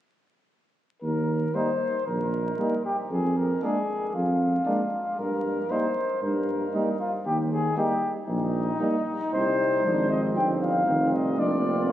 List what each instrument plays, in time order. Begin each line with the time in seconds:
1.02 tuba D#2, cornet A#4
1.54 euphonium G3, french horn A#3, flugelhorn D#4, cornet C5
2.06 tuba A#1, cornet A#4
2.58 euphonium G3, french horn A#3, flugelhorn D#4
2.85 cornet G4
3.11 tuba F2, cornet G#4
3.37 cornet A#4
3.62 euphonium G#3, french horn A#3, flugelhorn D4, cornet G#4
4.14 tuba F2, cornet F4
4.65 euphonium G#3, french horn A#3, flugelhorn D4
5.19 tuba G2, cornet A#4
5.70 euphonium G3, french horn A#3, flugelhorn D#4, cornet C5
6.22 tuba G2, cornet A#4
6.73 euphonium G3, french horn A#3, flugelhorn D#4
7.00 cornet F4
7.25 tuba D#2, cornet G4
7.51 cornet G#4
7.76 euphonium G3, french horn A#3, flugelhorn D#4, cornet G4
8.28 tuba A#1, cornet D#4
8.80 euphonium G3, french horn A#3, flugelhorn D#4
9.33 tuba C2, euphonium G3, french horn C4, flugelhorn D#4, cornet C5
9.84 tuba G#1, euphonium F3, flugelhorn D4, french horn D#4
10.10 flugelhorn C4, cornet D#5
10.35 tuba G1, cornet G5
10.62 cornet F5
10.86 tuba F1, euphonium D#3, flugelhorn C4
11.12 euphonium G3, cornet D#5
11.38 tuba F1, euphonium A#3, french horn D4, flugelhorn F4, cornet D5
11.64 french horn C4